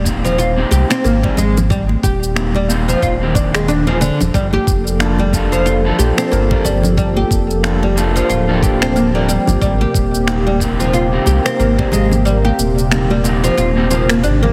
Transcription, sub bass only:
0.00 0.64 D#1 medium
0.72 0.84 C2 medium
1.05 1.28 G#1 medium
1.38 1.96 G#1 medium
2.03 2.95 D#1 medium
3.02 4.10 D#1 medium
4.21 4.30 D#1 medium
4.34 4.58 G1 loud
4.67 5.92 F1 medium
5.99 6.12 A#1 medium
6.32 6.56 G1 medium
6.65 7.24 G1 medium
7.31 8.22 F1 medium
8.30 9.38 D1 medium
9.48 9.57 G1 medium
9.62 9.85 G#1 loud
9.95 11.19 D#1 medium
11.27 11.39 C2 loud
11.59 11.83 G#1 loud
11.93 12.51 G#1 medium
12.59 13.50 D#1 medium
13.58 14.25 D#1 medium
14.23 14.53 G#1 medium

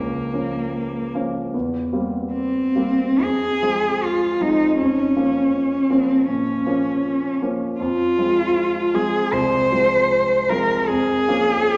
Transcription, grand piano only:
0.00 1.56 C#2 soft
0.00 0.33 F3 soft
0.00 0.34 A#3 soft
0.00 0.34 C#4 soft
0.33 1.10 F3 soft
0.33 1.10 A#3 soft
0.33 1.11 C#4 soft
1.15 1.50 F3 soft
1.15 1.50 A#3 soft
1.15 1.51 C#4 soft
1.54 1.91 E2 soft
1.93 2.72 G3 soft
1.93 2.72 A#3 soft
1.93 2.72 C4 soft
2.75 3.17 G3 soft
2.75 3.17 A#3 soft
2.75 3.17 C4 soft
3.21 3.62 F2 soft
3.62 4.36 F3 soft
3.62 4.36 G#3 soft
3.62 4.37 C4 soft
4.40 4.75 F3 soft
4.40 4.75 G#3 soft
4.40 4.75 C4 soft
4.79 5.15 F2 soft
5.16 5.87 F3 soft
5.16 5.87 A#3 soft
5.16 5.87 C#4 soft
5.90 6.24 F3 soft
5.90 6.25 A#3 soft
5.90 6.25 C#4 soft
6.28 6.66 A#2 soft
6.66 7.38 F3 soft
6.66 7.38 A#3 soft
6.66 7.38 C#4 soft
7.42 7.76 F3 soft
7.42 7.76 A#3 soft
7.42 7.76 C#4 soft
7.80 8.16 F2 soft
8.18 8.90 F3 soft
8.18 8.90 G#3 soft
8.18 8.90 C4 soft
8.94 9.28 F3 soft
8.94 9.29 G#3 soft
8.94 9.29 C4 soft
9.32 9.70 C2 soft
9.72 10.45 F3 soft
9.72 10.45 G#3 soft
9.72 10.46 C4 soft
10.50 10.84 F3 soft
10.50 10.84 G#3 soft
10.50 10.85 C4 soft
10.90 11.26 F2 soft
11.28 11.77 F3 soft
11.28 11.77 A#3 soft
11.28 11.77 C#4 soft

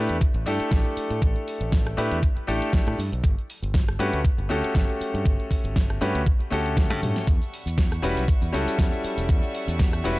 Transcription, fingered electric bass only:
0.10 0.19 E2 medium
0.34 0.44 A1 medium
0.46 0.57 G2 medium
0.60 muted fingered electric bass stroke soft
0.72 0.83 A1 medium
0.97 muted fingered electric bass stroke soft
1.10 1.20 A2 medium
1.22 1.33 A1 medium
1.61 1.94 A1 medium
1.98 2.09 A2 medium
2.11 2.21 E2 medium
2.37 muted fingered electric bass stroke soft
2.48 2.59 A1 medium
2.87 2.97 A2 loud
2.99 3.10 G2 loud
3.12 3.22 B1 loud
3.24 3.35 G1 loud
3.62 3.96 G1 medium
3.99 4.10 G2 medium
4.13 4.23 D2 medium
4.25 muted fingered electric bass stroke soft
4.38 4.48 G1 medium
4.50 4.61 D2 medium
4.63 muted fingered electric bass stroke soft
4.75 4.86 G1 medium
5.01 muted fingered electric bass stroke soft
5.14 5.24 G2 medium
5.26 5.37 G1 medium
5.64 5.98 G1 medium
6.01 6.12 G2 medium
6.15 6.24 D2 medium
6.40 muted fingered electric bass stroke soft
6.52 6.90 D2 medium
6.90 7.00 G2 medium
7.02 7.13 G2 medium
7.27 7.38 E2 loud
7.66 8.00 E2 medium
8.03 8.14 E1 medium
8.17 8.26 B1 medium
8.42 8.51 E2 medium
8.53 8.64 C#2 medium
8.67 muted fingered electric bass stroke soft
8.79 8.90 E2 medium
9.04 muted fingered electric bass stroke soft
9.17 9.27 E1 medium
9.29 9.40 E2 loud
9.68 10.01 E2 medium
10.05 10.16 E1 medium

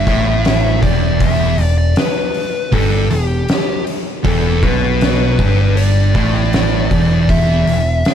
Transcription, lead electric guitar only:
0.00 0.86 E5 loud
0.82 1.22 D5 loud
1.21 1.62 E5 loud
1.62 1.74 D5 loud
1.78 1.98 D5 medium
1.98 2.75 B4 medium
2.73 3.10 A4 medium
3.11 3.83 G4 medium
4.25 4.60 A4 medium
4.63 5.76 B4 medium
5.77 7.20 D5 loud
7.21 7.28 D5 medium
7.30 8.14 E5 loud

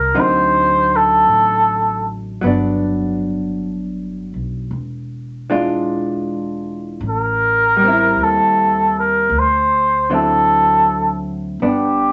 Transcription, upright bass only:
0.12 1.23 D2 medium
1.27 2.38 A1 medium
2.43 4.31 G1 medium
4.34 4.69 B1 medium
4.71 6.97 E1 medium
7.01 8.12 A1 medium
8.16 9.27 D#2 medium
9.30 11.56 D2 medium
11.60 12.12 G1 medium

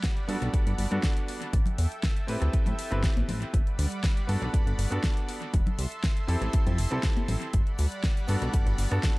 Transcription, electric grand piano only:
0.28 0.88 B3 medium
0.28 0.89 D4 medium
0.28 0.89 F#4 medium
0.28 0.89 A4 medium
0.91 1.52 B3 medium
0.91 1.52 D4 medium
0.91 1.52 F#4 medium
0.91 1.53 A4 medium
2.27 2.88 C4 medium
2.27 2.88 E4 medium
2.27 2.88 G4 medium
2.27 2.89 B4 medium
2.91 3.52 C4 medium
2.91 3.52 E4 medium
2.91 3.52 G4 medium
2.91 3.53 B4 loud
4.27 4.88 B3 medium
4.27 4.88 D4 medium
4.27 4.89 F#4 medium
4.27 4.89 A4 medium
4.90 5.51 B3 medium
4.90 5.52 D4 medium
4.90 5.52 F#4 medium
4.90 5.53 A4 medium
6.27 6.88 C4 medium
6.27 6.88 E4 medium
6.27 6.89 G4 medium
6.27 6.89 A4 medium
6.91 7.52 C4 medium
6.91 7.52 E4 medium
6.91 7.52 G4 medium
6.91 7.53 A4 medium
8.27 8.88 B3 medium
8.27 8.89 D4 medium
8.27 8.89 F#4 medium
8.27 8.89 A4 medium
8.91 9.19 B3 medium
8.91 9.19 D4 medium
8.91 9.19 F#4 medium
8.91 9.19 A4 medium

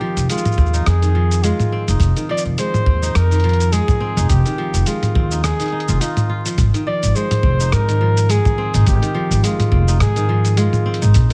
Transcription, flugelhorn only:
0.00 0.30 G4 loud
0.30 0.89 F4 medium
0.87 1.46 G#4 loud
1.44 1.89 F4 medium
2.31 2.43 D5 loud
2.59 3.18 C5 loud
3.16 3.74 A#4 loud
3.73 4.31 G#4 loud
4.29 4.88 G4 loud
4.87 5.43 F4 medium
5.44 6.02 G#4 loud
6.01 6.45 F4 medium
6.87 7.17 D5 loud
7.16 7.74 C5 loud
7.73 8.32 A#4 loud
8.31 8.89 G#4 loud
8.87 9.46 G4 loud
9.45 10.01 F4 medium
10.01 10.60 G#4 loud
10.58 11.03 F4 medium

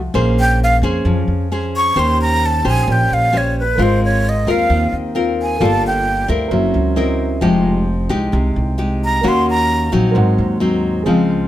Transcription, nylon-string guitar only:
0.00 0.12 F3 medium
0.14 1.03 A#3 medium
0.14 0.79 C#4 medium
0.14 0.79 G#4 medium
0.14 0.79 C5 medium
0.83 1.47 C#4 medium
0.83 1.47 G#4 medium
0.83 1.48 C5 medium
1.06 1.94 F3 medium
1.52 1.93 C#4 medium
1.52 1.93 G#4 medium
1.52 1.93 C5 medium
1.96 2.85 D#3 medium
1.96 2.61 C#4 medium
1.96 2.61 G4 medium
1.96 2.61 C5 medium
2.64 3.29 C#4 medium
2.64 3.29 G4 medium
2.64 3.29 C5 medium
2.87 3.76 A#2 medium
3.33 3.62 C#4 medium
3.33 3.62 G4 medium
3.33 3.63 C5 medium
3.78 4.67 G#3 medium
3.78 4.43 C4 medium
3.78 4.43 F4 medium
3.78 4.43 A#4 medium
4.47 5.12 C4 medium
4.47 5.12 F4 medium
4.47 5.12 A#4 medium
4.70 5.58 D#3 medium
5.15 5.57 C4 soft
5.15 5.57 F4 medium
5.15 5.57 A#4 medium
5.61 6.49 G3 medium
5.61 6.25 A#3 medium
5.61 6.25 F4 medium
5.61 6.25 A4 medium
6.28 6.93 C4 medium
6.28 6.93 E4 medium
6.28 6.93 A#4 medium
6.51 7.40 F#3 medium
6.96 7.38 C4 medium
6.96 7.39 E4 medium
6.96 7.39 A#4 medium
7.41 8.30 F3 medium
7.41 7.87 G#3 medium
7.41 7.87 D#4 medium
7.41 7.87 G4 medium
8.09 8.74 G#3 medium
8.09 8.74 D#4 medium
8.09 8.75 G4 medium
8.32 9.21 C3 medium
8.78 9.20 G#3 medium
8.78 9.20 D#4 medium
8.78 9.21 G4 medium
9.23 9.92 D#3 medium
9.23 9.88 A#3 medium
9.23 9.89 C#4 medium
9.23 9.89 F#4 medium
9.92 10.57 F#3 medium
9.92 10.57 C4 medium
9.92 10.57 D#4 medium
10.15 11.04 G#2 medium
10.60 11.02 F#3 medium
10.60 11.03 C4 medium
10.60 11.03 D#4 medium
11.06 11.48 C#3 medium
11.06 11.48 F3 medium
11.06 11.48 G#3 medium
11.06 11.48 C4 medium

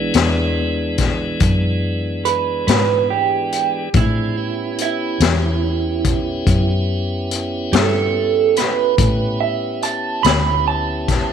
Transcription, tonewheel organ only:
0.00 3.90 E3 medium
0.00 3.90 G#3 medium
0.00 3.89 B3 medium
0.00 3.89 D4 medium
3.94 4.36 F3 medium
3.94 4.36 C4 medium
3.94 4.36 D4 medium
3.94 4.36 G#4 medium
4.37 8.96 B3 medium
4.37 8.95 C#4 medium
4.37 8.96 E4 medium
4.37 8.95 G4 medium
8.99 11.33 B3 medium
8.99 11.33 C#4 medium
8.99 11.33 E4 medium
8.99 11.33 G4 medium

